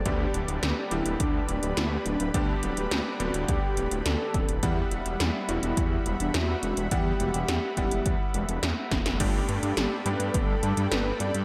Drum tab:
CC |----------------|----------------|----------------|----------------|
HH |x-xxx-xxx-xxx-xx|x-xxx-xxx-xxx-xx|x-xxx-xxx-xxx-xx|x-xxx-xxx-xxx-xx|
SD |----o-------o---|----o-------o---|----o-------o---|----o-------o-oo|
BD |o-------o-------|o-------o-----o-|o-------o-------|o-----o-o-----o-|

CC |x---------------|
HH |x-xxx-xxx-xxx-xx|
SD |----o-------o---|
BD |o-------o-------|